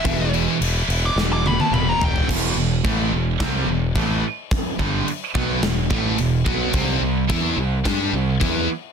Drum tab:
CC |x-x-x-x---------|x---x---x---x---|x---x---x---x---|x---x---x---x---|
SD |--------o-------|--------o-------|--------o-------|--------o-------|
T1 |----------oo----|----------------|----------------|----------------|
T2 |------------o---|----------------|----------------|----------------|
FT |--------------oo|----------------|----------------|----------------|
BD |o---------------|o---o---o---o---|o-o---o---o---o-|o---o---o---o---|